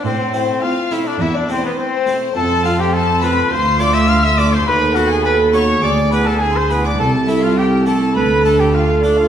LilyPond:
<<
  \new Staff \with { instrumentName = "Violin section" } { \time 4/4 \key a \minor \tempo 4 = 104 c''8 c''8 f''8 e''16 d''16 e''16 d''16 c''16 b'16 c''4 | \key d \dorian a''8 f''16 g''16 a''8 b''8 c'''8 d'''16 e'''16 f'''16 e'''16 d'''16 c'''16 | b''8 fis''16 gis''16 b''8 cis'''8 d'''8 b''16 a''16 gis''16 c'''16 b''16 d'''16 | a''8 e''16 f''16 g''8 a''8 b''8 a''16 g''16 f''8 d''16 f''16 | }
  \new Staff \with { instrumentName = "Violin section" } { \time 4/4 \key a \minor c''8 c''8 f''8 e''16 d''16 e''16 d''16 c''16 b'16 c''4 | \key d \dorian a''8 f''16 g''16 a''8 b''8 c'''8 d'''16 e'''16 f'''16 e'''16 d'''16 c'''16 | b''8 fis''16 gis''16 b''8 cis'''8 d'''8 b''16 a''16 gis''16 c'''16 b''16 d'''16 | a''8 e''16 f''16 g''8 a''8 b''8 a''16 g''16 f''8 d''16 f''16 | }
  \new Staff \with { instrumentName = "Trumpet" } { \time 4/4 \key a \minor c'8 c'8 f'8 e'16 d'16 e'16 d'16 c'16 b16 c'8. r16 | \key d \dorian a'8 f'16 g'16 a'8 b'8 c''8 d''16 e''16 f''16 e''16 d''16 c''16 | b'8 fis'16 gis'16 b'8 cis''8 d''8 b'16 a'16 gis'16 c''16 b'16 d''16 | a'8 e'16 f'16 g'8 a'8 b'8 a'16 g'16 f'8 d'16 f'16 | }
  \new Staff \with { instrumentName = "Viola section" } { \time 4/4 \key a \minor r4 c'4 r4 c'4 | \key d \dorian c'2 f'2 | a'2 gis'2 | a'1 | }
  \new Staff \with { instrumentName = "Harpsichord" } { \time 4/4 \key a \minor r8 <a c' e'>4 <a c' e'>8 r8 <a c' e'>4 <a c' e'>8 | \key d \dorian r8 <a c' f'>4 <a c' f'>8 r8 <a f' a'>4 <a f' a'>8 | r8 <b fis' a'>4 <b fis' a'>8 r8 <b e' gis'>4 <b e' gis'>8 | r8 <a e' a'>4 <a e' a'>8 r8 <a d' a'>4 <a d' a'>8 | }
  \new Staff \with { instrumentName = "Harpsichord" } { \clef bass \time 4/4 \key a \minor a,4 r4 e,4 r4 | \key d \dorian f,2 d,2 | dis,2 d,2 | c,2 d,2 | }
  \new Staff \with { instrumentName = "Cello section" } { \clef bass \time 4/4 \key a \minor a,4 r4 e,4 r4 | \key d \dorian f,2 d,2 | dis,2 d,2 | c,2 d,2 | }
>>